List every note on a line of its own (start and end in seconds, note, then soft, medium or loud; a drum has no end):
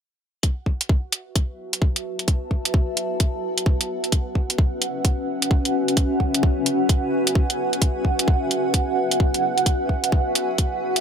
0.43 11.01 F#4 medium
0.43 11.01 F#5 medium
0.43 kick loud
0.43 closed hi-hat medium
0.64 11.01 B4 medium
0.64 11.01 E5 medium
0.64 kick medium
0.81 closed hi-hat medium
0.89 kick loud
1.12 closed hi-hat medium
1.25 3.89 A5 medium
1.36 kick loud
1.36 closed hi-hat medium
1.73 closed hi-hat medium
1.82 kick loud
1.96 closed hi-hat soft
2.19 closed hi-hat soft
2.28 kick loud
2.28 closed hi-hat medium
2.51 kick medium
2.65 closed hi-hat medium
2.74 kick loud
2.97 closed hi-hat medium
3.20 kick loud
3.20 closed hi-hat medium
3.58 closed hi-hat medium
3.66 kick loud
3.81 closed hi-hat soft
3.89 9.32 C#4 medium
4.04 closed hi-hat soft
4.12 kick loud
4.12 closed hi-hat medium
4.35 kick medium
4.50 closed hi-hat medium
4.56 11.01 G#5 medium
4.56 kick loud
4.82 closed hi-hat medium
5.05 kick loud
5.05 closed hi-hat medium
5.42 closed hi-hat medium
5.51 kick loud
5.65 closed hi-hat soft
5.88 closed hi-hat soft
5.97 kick loud
5.97 closed hi-hat medium
6.20 kick medium
6.34 closed hi-hat medium
6.43 kick loud
6.66 closed hi-hat medium
6.89 kick loud
6.89 closed hi-hat medium
7.27 closed hi-hat medium
7.35 kick loud
7.50 closed hi-hat soft
7.73 closed hi-hat soft
7.82 kick loud
7.82 closed hi-hat medium
8.05 kick medium
8.19 closed hi-hat medium
8.28 kick loud
8.51 closed hi-hat medium
8.74 kick loud
8.74 closed hi-hat medium
9.11 closed hi-hat medium
9.20 kick loud
9.34 closed hi-hat soft
9.58 closed hi-hat soft
9.66 kick loud
9.66 closed hi-hat medium
9.89 kick medium
10.04 closed hi-hat medium
10.12 kick loud
10.35 closed hi-hat medium
10.58 kick loud
10.58 closed hi-hat medium
10.96 closed hi-hat medium